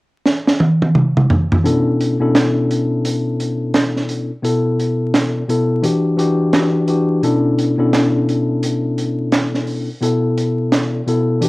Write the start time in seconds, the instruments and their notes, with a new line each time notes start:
0.26 snare
0.48 snare
0.60 high tom
0.82 high tom
0.95 mid tom
1.17 mid tom
1.30 floor tom
1.52 floor tom
1.64 tine electric piano B2 B3 C#4 D4 E4 A4, closed hi-hat
2.00 closed hi-hat
2.20 tine electric piano B2 B3 C#4 D4 E4 A4
2.35 snare, clap, closed hi-hat
2.71 closed hi-hat
3.05 closed hi-hat
3.40 closed hi-hat
3.74 snare, clap, closed hi-hat
3.96 snare
4.09 closed hi-hat
4.42 tine electric piano B2 B3 E4 A4, closed hi-hat
4.79 closed hi-hat
5.14 snare, clap, closed hi-hat
5.48 tine electric piano B2 B3 E4 A4, closed hi-hat
5.82 tine electric piano E3 D4 F#4 G4, closed hi-hat
6.17 tine electric piano E3 D4 F#4 G4, closed hi-hat
6.53 tine electric piano E3 D4 F#4 G4, snare, clap, closed hi-hat
6.87 tine electric piano E3 D4 F#4 G4, closed hi-hat
7.22 tine electric piano B2 B3 C#4 D4 E4 A4, closed hi-hat
7.58 closed hi-hat
7.78 tine electric piano B2 B3 C#4 D4 E4 A4
7.93 snare, clap, closed hi-hat
8.29 closed hi-hat
8.63 closed hi-hat
8.98 closed hi-hat
9.32 snare, clap, closed hi-hat
9.54 snare
9.67 open hi-hat
10.01 tine electric piano B2 B3 E4 A4, closed hi-hat
10.38 closed hi-hat
10.72 snare, clap, closed hi-hat
11.07 tine electric piano B2 B3 E4 A4, closed hi-hat
11.41 tine electric piano E3 D4 F#4 G4, closed hi-hat